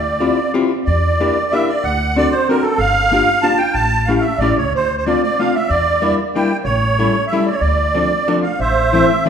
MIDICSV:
0, 0, Header, 1, 4, 480
1, 0, Start_track
1, 0, Key_signature, -1, "minor"
1, 0, Tempo, 322581
1, 1293, Time_signature, 3, 2, 24, 8
1, 13826, End_track
2, 0, Start_track
2, 0, Title_t, "Accordion"
2, 0, Program_c, 0, 21
2, 0, Note_on_c, 0, 74, 75
2, 773, Note_off_c, 0, 74, 0
2, 1273, Note_on_c, 0, 74, 81
2, 2258, Note_on_c, 0, 76, 91
2, 2279, Note_off_c, 0, 74, 0
2, 2503, Note_on_c, 0, 74, 68
2, 2514, Note_off_c, 0, 76, 0
2, 2732, Note_on_c, 0, 78, 94
2, 2743, Note_off_c, 0, 74, 0
2, 3224, Note_off_c, 0, 78, 0
2, 3231, Note_on_c, 0, 74, 104
2, 3446, Note_on_c, 0, 72, 77
2, 3473, Note_off_c, 0, 74, 0
2, 3689, Note_off_c, 0, 72, 0
2, 3696, Note_on_c, 0, 70, 80
2, 3903, Note_on_c, 0, 69, 73
2, 3943, Note_off_c, 0, 70, 0
2, 4143, Note_on_c, 0, 77, 112
2, 4155, Note_off_c, 0, 69, 0
2, 5087, Note_on_c, 0, 81, 96
2, 5130, Note_off_c, 0, 77, 0
2, 5315, Note_on_c, 0, 79, 87
2, 5350, Note_off_c, 0, 81, 0
2, 5560, Note_on_c, 0, 81, 95
2, 5572, Note_off_c, 0, 79, 0
2, 6022, Note_on_c, 0, 77, 76
2, 6064, Note_off_c, 0, 81, 0
2, 6260, Note_on_c, 0, 76, 74
2, 6299, Note_off_c, 0, 77, 0
2, 6530, Note_off_c, 0, 76, 0
2, 6533, Note_on_c, 0, 74, 85
2, 6799, Note_off_c, 0, 74, 0
2, 6805, Note_on_c, 0, 73, 67
2, 7043, Note_off_c, 0, 73, 0
2, 7071, Note_on_c, 0, 72, 85
2, 7379, Note_off_c, 0, 72, 0
2, 7401, Note_on_c, 0, 72, 53
2, 7511, Note_off_c, 0, 72, 0
2, 7525, Note_on_c, 0, 74, 81
2, 7763, Note_off_c, 0, 74, 0
2, 7786, Note_on_c, 0, 74, 86
2, 8016, Note_off_c, 0, 74, 0
2, 8017, Note_on_c, 0, 77, 85
2, 8258, Note_on_c, 0, 76, 76
2, 8261, Note_off_c, 0, 77, 0
2, 8464, Note_on_c, 0, 74, 88
2, 8490, Note_off_c, 0, 76, 0
2, 9144, Note_off_c, 0, 74, 0
2, 9447, Note_on_c, 0, 79, 80
2, 9777, Note_off_c, 0, 79, 0
2, 9888, Note_on_c, 0, 73, 93
2, 10792, Note_off_c, 0, 73, 0
2, 10822, Note_on_c, 0, 76, 78
2, 11096, Note_on_c, 0, 74, 58
2, 11097, Note_off_c, 0, 76, 0
2, 11185, Note_on_c, 0, 73, 56
2, 11223, Note_off_c, 0, 74, 0
2, 11313, Note_on_c, 0, 74, 83
2, 11326, Note_off_c, 0, 73, 0
2, 12489, Note_off_c, 0, 74, 0
2, 12537, Note_on_c, 0, 77, 57
2, 12793, Note_off_c, 0, 77, 0
2, 12793, Note_on_c, 0, 76, 80
2, 12809, Note_on_c, 0, 72, 63
2, 13266, Note_off_c, 0, 76, 0
2, 13288, Note_on_c, 0, 76, 90
2, 13483, Note_off_c, 0, 72, 0
2, 13779, Note_off_c, 0, 76, 0
2, 13826, End_track
3, 0, Start_track
3, 0, Title_t, "Hollow-body jazz guitar"
3, 0, Program_c, 1, 26
3, 302, Note_on_c, 1, 65, 54
3, 309, Note_on_c, 1, 67, 46
3, 316, Note_on_c, 1, 60, 54
3, 317, Note_on_c, 1, 64, 43
3, 560, Note_off_c, 1, 65, 0
3, 561, Note_off_c, 1, 67, 0
3, 564, Note_off_c, 1, 64, 0
3, 566, Note_off_c, 1, 60, 0
3, 803, Note_on_c, 1, 65, 66
3, 811, Note_on_c, 1, 67, 69
3, 815, Note_on_c, 1, 60, 67
3, 825, Note_on_c, 1, 64, 46
3, 1058, Note_off_c, 1, 67, 0
3, 1060, Note_off_c, 1, 65, 0
3, 1061, Note_off_c, 1, 64, 0
3, 1063, Note_off_c, 1, 60, 0
3, 1792, Note_on_c, 1, 58, 57
3, 1794, Note_on_c, 1, 62, 38
3, 1797, Note_on_c, 1, 67, 58
3, 1806, Note_on_c, 1, 64, 32
3, 2032, Note_off_c, 1, 62, 0
3, 2035, Note_off_c, 1, 58, 0
3, 2036, Note_off_c, 1, 64, 0
3, 2038, Note_off_c, 1, 67, 0
3, 2277, Note_on_c, 1, 67, 53
3, 2281, Note_on_c, 1, 58, 69
3, 2292, Note_on_c, 1, 62, 44
3, 2305, Note_on_c, 1, 64, 43
3, 2516, Note_off_c, 1, 67, 0
3, 2521, Note_off_c, 1, 58, 0
3, 2521, Note_off_c, 1, 62, 0
3, 2523, Note_off_c, 1, 64, 0
3, 3218, Note_on_c, 1, 60, 60
3, 3231, Note_on_c, 1, 62, 55
3, 3237, Note_on_c, 1, 66, 45
3, 3244, Note_on_c, 1, 69, 45
3, 3463, Note_off_c, 1, 60, 0
3, 3464, Note_off_c, 1, 66, 0
3, 3464, Note_off_c, 1, 69, 0
3, 3466, Note_off_c, 1, 62, 0
3, 3707, Note_on_c, 1, 60, 57
3, 3720, Note_on_c, 1, 62, 44
3, 3728, Note_on_c, 1, 66, 49
3, 3736, Note_on_c, 1, 69, 50
3, 3945, Note_off_c, 1, 60, 0
3, 3946, Note_off_c, 1, 66, 0
3, 3947, Note_off_c, 1, 69, 0
3, 3948, Note_off_c, 1, 62, 0
3, 4636, Note_on_c, 1, 58, 55
3, 4644, Note_on_c, 1, 62, 54
3, 4651, Note_on_c, 1, 65, 48
3, 4662, Note_on_c, 1, 67, 50
3, 4883, Note_off_c, 1, 65, 0
3, 4885, Note_off_c, 1, 58, 0
3, 4885, Note_off_c, 1, 62, 0
3, 4885, Note_off_c, 1, 67, 0
3, 5108, Note_on_c, 1, 62, 53
3, 5113, Note_on_c, 1, 65, 49
3, 5118, Note_on_c, 1, 67, 55
3, 5121, Note_on_c, 1, 58, 54
3, 5353, Note_off_c, 1, 62, 0
3, 5356, Note_off_c, 1, 65, 0
3, 5356, Note_off_c, 1, 67, 0
3, 5360, Note_off_c, 1, 58, 0
3, 6073, Note_on_c, 1, 57, 52
3, 6085, Note_on_c, 1, 64, 55
3, 6089, Note_on_c, 1, 61, 45
3, 6098, Note_on_c, 1, 67, 49
3, 6318, Note_off_c, 1, 57, 0
3, 6320, Note_off_c, 1, 61, 0
3, 6324, Note_off_c, 1, 64, 0
3, 6326, Note_off_c, 1, 67, 0
3, 6566, Note_on_c, 1, 57, 43
3, 6579, Note_on_c, 1, 61, 49
3, 6580, Note_on_c, 1, 67, 53
3, 6585, Note_on_c, 1, 64, 38
3, 6810, Note_off_c, 1, 57, 0
3, 6811, Note_off_c, 1, 64, 0
3, 6812, Note_off_c, 1, 61, 0
3, 6815, Note_off_c, 1, 67, 0
3, 7535, Note_on_c, 1, 57, 58
3, 7546, Note_on_c, 1, 60, 46
3, 7552, Note_on_c, 1, 65, 55
3, 7566, Note_on_c, 1, 62, 45
3, 7779, Note_off_c, 1, 65, 0
3, 7781, Note_off_c, 1, 57, 0
3, 7782, Note_off_c, 1, 60, 0
3, 7782, Note_off_c, 1, 62, 0
3, 8027, Note_on_c, 1, 57, 49
3, 8037, Note_on_c, 1, 60, 47
3, 8048, Note_on_c, 1, 65, 55
3, 8059, Note_on_c, 1, 62, 40
3, 8263, Note_off_c, 1, 57, 0
3, 8264, Note_off_c, 1, 60, 0
3, 8264, Note_off_c, 1, 62, 0
3, 8264, Note_off_c, 1, 65, 0
3, 8954, Note_on_c, 1, 55, 54
3, 8957, Note_on_c, 1, 58, 45
3, 8957, Note_on_c, 1, 62, 40
3, 8970, Note_on_c, 1, 64, 53
3, 9200, Note_off_c, 1, 62, 0
3, 9202, Note_off_c, 1, 55, 0
3, 9205, Note_off_c, 1, 58, 0
3, 9205, Note_off_c, 1, 64, 0
3, 9456, Note_on_c, 1, 58, 50
3, 9466, Note_on_c, 1, 55, 62
3, 9468, Note_on_c, 1, 62, 49
3, 9474, Note_on_c, 1, 64, 53
3, 9692, Note_off_c, 1, 58, 0
3, 9694, Note_off_c, 1, 62, 0
3, 9694, Note_off_c, 1, 64, 0
3, 9695, Note_off_c, 1, 55, 0
3, 10398, Note_on_c, 1, 55, 55
3, 10411, Note_on_c, 1, 64, 52
3, 10412, Note_on_c, 1, 57, 58
3, 10419, Note_on_c, 1, 61, 37
3, 10639, Note_off_c, 1, 55, 0
3, 10640, Note_off_c, 1, 64, 0
3, 10644, Note_off_c, 1, 61, 0
3, 10645, Note_off_c, 1, 57, 0
3, 10898, Note_on_c, 1, 55, 55
3, 10906, Note_on_c, 1, 57, 54
3, 10908, Note_on_c, 1, 64, 58
3, 10915, Note_on_c, 1, 61, 47
3, 11129, Note_off_c, 1, 55, 0
3, 11129, Note_off_c, 1, 57, 0
3, 11130, Note_off_c, 1, 61, 0
3, 11132, Note_off_c, 1, 64, 0
3, 11822, Note_on_c, 1, 60, 48
3, 11832, Note_on_c, 1, 53, 49
3, 11835, Note_on_c, 1, 57, 39
3, 11847, Note_on_c, 1, 62, 51
3, 12072, Note_off_c, 1, 60, 0
3, 12077, Note_off_c, 1, 57, 0
3, 12078, Note_off_c, 1, 62, 0
3, 12080, Note_off_c, 1, 53, 0
3, 12317, Note_on_c, 1, 53, 65
3, 12321, Note_on_c, 1, 57, 57
3, 12323, Note_on_c, 1, 62, 76
3, 12330, Note_on_c, 1, 60, 44
3, 12567, Note_off_c, 1, 53, 0
3, 12567, Note_off_c, 1, 62, 0
3, 12570, Note_off_c, 1, 57, 0
3, 12570, Note_off_c, 1, 60, 0
3, 13284, Note_on_c, 1, 64, 49
3, 13289, Note_on_c, 1, 52, 57
3, 13301, Note_on_c, 1, 57, 46
3, 13307, Note_on_c, 1, 60, 45
3, 13530, Note_off_c, 1, 64, 0
3, 13535, Note_off_c, 1, 52, 0
3, 13536, Note_off_c, 1, 60, 0
3, 13537, Note_off_c, 1, 57, 0
3, 13770, Note_on_c, 1, 52, 61
3, 13779, Note_on_c, 1, 60, 49
3, 13826, Note_off_c, 1, 52, 0
3, 13826, Note_off_c, 1, 60, 0
3, 13826, End_track
4, 0, Start_track
4, 0, Title_t, "Upright bass"
4, 0, Program_c, 2, 32
4, 0, Note_on_c, 2, 38, 66
4, 446, Note_off_c, 2, 38, 0
4, 1296, Note_on_c, 2, 40, 65
4, 1923, Note_off_c, 2, 40, 0
4, 2736, Note_on_c, 2, 38, 70
4, 3353, Note_off_c, 2, 38, 0
4, 4141, Note_on_c, 2, 31, 67
4, 4765, Note_off_c, 2, 31, 0
4, 5570, Note_on_c, 2, 33, 61
4, 6200, Note_off_c, 2, 33, 0
4, 6524, Note_on_c, 2, 33, 60
4, 6761, Note_off_c, 2, 33, 0
4, 6799, Note_on_c, 2, 37, 52
4, 7003, Note_off_c, 2, 37, 0
4, 7012, Note_on_c, 2, 38, 60
4, 7648, Note_off_c, 2, 38, 0
4, 8481, Note_on_c, 2, 40, 74
4, 9101, Note_off_c, 2, 40, 0
4, 9894, Note_on_c, 2, 33, 80
4, 10518, Note_off_c, 2, 33, 0
4, 11325, Note_on_c, 2, 38, 69
4, 11960, Note_off_c, 2, 38, 0
4, 12789, Note_on_c, 2, 33, 70
4, 13418, Note_off_c, 2, 33, 0
4, 13826, End_track
0, 0, End_of_file